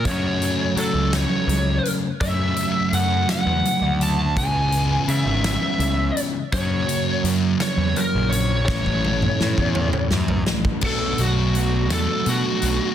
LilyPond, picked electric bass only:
\new Staff \with { instrumentName = "Picked electric bass" } { \clef bass \time 6/8 \key b \dorian \tempo 4. = 56 fis,4 fis16 cis,8 r16 cis,8 r8 | fis,8 r8 fis,8 r16 e,16 r16 d,8. | cis,4 cis16 gis,,8 r16 cis,8 r8 | fis,8 r8 fis,8 r16 e,16 r16 ais,,8. |
a,,4 a,16 e,8 r16 fis,8 r8 | b,,8 b,,4 e,16 r16 b,16 r16 b,,16 r16 | }